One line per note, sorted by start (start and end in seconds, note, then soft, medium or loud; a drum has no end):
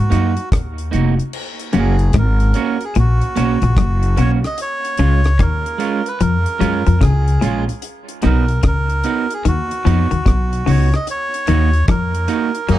0.00 0.11 G#2 medium
0.00 0.49 F#4 medium
0.10 0.36 F#2 medium
0.10 0.32 A#3 medium
0.10 0.33 D#4 medium
0.10 0.33 F#4 medium
0.10 closed hi-hat medium
0.37 closed hi-hat soft
0.52 0.90 D#2 medium
0.52 kick loud
0.52 cross-stick loud
0.52 closed hi-hat loud
0.78 closed hi-hat soft
0.91 1.17 F1 medium
0.91 1.14 A#3 medium
0.91 1.14 D#4 medium
0.91 1.14 F#4 medium
0.91 closed hi-hat medium
1.17 muted clean electric guitar stroke soft
1.17 closed hi-hat medium
1.33 crash medium
1.59 closed hi-hat medium
1.73 2.12 F#1 loud
1.73 1.98 F#2 medium
1.73 1.95 A#3 medium
1.73 1.95 C#4 medium
1.73 1.95 F#4 loud
1.73 closed hi-hat medium
1.78 2.14 G#4 medium
1.99 closed hi-hat soft
2.13 2.52 G#1 medium
2.13 2.40 G#2 medium
2.13 kick loud
2.13 cross-stick loud
2.13 closed hi-hat medium
2.19 2.85 A#4 medium
2.40 closed hi-hat soft
2.54 2.76 A#3 medium
2.54 2.77 C#4 loud
2.54 2.77 F#4 medium
2.54 closed hi-hat medium
2.81 2.97 G#4 medium
2.81 closed hi-hat soft
2.95 3.20 A#1 loud
2.95 3.12 A#2 medium
2.95 4.23 F#4 loud
2.95 closed hi-hat medium
3.21 closed hi-hat soft
3.36 3.60 B1 medium
3.36 3.53 B2 medium
3.36 3.57 A#3 medium
3.36 3.58 C#4 medium
3.36 3.58 F#4 loud
3.36 closed hi-hat medium
3.62 3.76 A#1 loud
3.62 3.72 A#2 medium
3.62 closed hi-hat soft
3.77 4.14 F#1 loud
3.77 4.02 F#2 medium
3.77 kick loud
3.77 cross-stick loud
3.77 closed hi-hat loud
4.03 closed hi-hat soft
4.17 4.41 B1 medium
4.17 4.34 B2 medium
4.17 4.39 A#3 medium
4.17 4.39 C#4 medium
4.17 4.39 F#4 medium
4.17 4.31 C#5 loud
4.17 closed hi-hat medium
4.43 4.60 D#5 loud
4.43 muted clean electric guitar stroke soft
4.43 cross-stick medium
4.43 closed hi-hat medium
4.58 5.43 C#5 loud
4.58 closed hi-hat loud
4.85 closed hi-hat medium
4.97 5.36 C#2 medium
4.97 5.24 C#3 medium
4.97 5.20 G#3 medium
4.97 5.20 C#4 medium
4.97 5.20 F4 medium
4.97 closed hi-hat medium
5.24 cross-stick medium
5.24 closed hi-hat soft
5.39 5.77 D#2 medium
5.39 5.64 D#3 medium
5.39 6.09 A#4 loud
5.39 kick loud
5.39 cross-stick loud
5.39 closed hi-hat medium
5.66 closed hi-hat medium
5.78 6.00 G#3 medium
5.78 6.01 C#4 medium
5.78 6.01 F4 medium
5.78 closed hi-hat medium
6.06 6.22 B4 medium
6.06 closed hi-hat soft
6.20 6.44 F2 loud
6.20 6.36 F3 medium
6.20 7.05 A#4 medium
6.20 closed hi-hat medium
6.46 closed hi-hat soft
6.59 6.85 F#2 medium
6.59 6.76 F#3 medium
6.59 6.81 G#3 medium
6.59 6.82 C#4 loud
6.59 6.82 F4 loud
6.59 closed hi-hat medium
6.86 7.01 F2 medium
6.86 6.96 F3 medium
6.86 closed hi-hat soft
7.01 7.39 C#2 medium
7.01 7.25 C#3 medium
7.01 7.64 G#4 medium
7.01 kick loud
7.01 cross-stick loud
7.01 closed hi-hat loud
7.28 closed hi-hat medium
7.41 7.66 A#1 medium
7.41 7.57 A#2 medium
7.41 7.63 G#3 medium
7.41 7.63 C#4 medium
7.41 7.64 F4 medium
7.41 closed hi-hat medium
7.68 muted clean electric guitar stroke soft
7.68 closed hi-hat medium
7.82 closed hi-hat medium
8.09 closed hi-hat medium
8.22 8.61 B1 medium
8.22 8.47 B2 medium
8.22 8.44 B3 medium
8.22 8.45 D#4 medium
8.22 8.45 F#4 medium
8.22 8.62 A#4 medium
8.22 cross-stick medium
8.22 closed hi-hat medium
8.48 closed hi-hat soft
8.63 9.01 C#2 medium
8.63 8.88 C#3 medium
8.63 kick loud
8.63 cross-stick loud
8.63 closed hi-hat medium
8.67 9.34 A#4 loud
8.90 closed hi-hat soft
9.04 9.26 B3 medium
9.04 9.26 D#4 medium
9.04 9.26 F#4 medium
9.04 closed hi-hat medium
9.30 9.46 G#4 medium
9.30 closed hi-hat medium
9.45 9.69 D#2 loud
9.45 9.60 D#3 medium
9.45 10.72 F#4 loud
9.45 closed hi-hat medium
9.71 closed hi-hat medium
9.85 10.10 F2 medium
9.85 10.01 F3 medium
9.85 10.07 B3 medium
9.85 10.07 D#4 medium
9.85 10.08 F#4 loud
9.85 closed hi-hat medium
10.11 10.25 D#2 medium
10.11 10.20 D#3 medium
10.11 closed hi-hat soft
10.26 10.64 B1 medium
10.26 10.50 B2 medium
10.26 kick loud
10.26 cross-stick loud
10.26 closed hi-hat loud
10.53 closed hi-hat medium
10.66 10.90 C#2 medium
10.66 10.82 C#3 medium
10.66 10.88 B3 medium
10.66 10.88 D#4 medium
10.66 10.88 F#4 medium
10.66 10.95 C#5 medium
10.66 open hi-hat medium
10.92 11.08 D#5 loud
10.92 muted clean electric guitar stroke soft
10.92 cross-stick medium
10.92 closed hi-hat medium
11.07 11.86 C#5 loud
11.07 closed hi-hat medium
11.34 closed hi-hat medium
11.47 11.85 D#2 loud
11.47 11.72 D#3 medium
11.47 11.69 A#3 medium
11.47 11.69 D#4 medium
11.47 11.70 F#4 medium
11.47 closed hi-hat medium
11.73 closed hi-hat soft
11.88 12.26 F2 medium
11.88 12.13 F3 medium
11.88 12.73 A#4 loud
11.88 kick loud
11.88 cross-stick loud
11.88 closed hi-hat medium
12.15 closed hi-hat medium
12.28 12.50 A#3 medium
12.28 12.50 D#4 medium
12.28 12.50 F#4 medium
12.28 closed hi-hat medium
12.55 closed hi-hat soft
12.69 12.79 F#2 loud
12.69 12.79 D#3 loud
12.69 12.79 F#3 medium
12.69 12.79 A#3 loud
12.69 12.79 D#4 loud
12.69 12.79 G#4 medium
12.69 closed hi-hat medium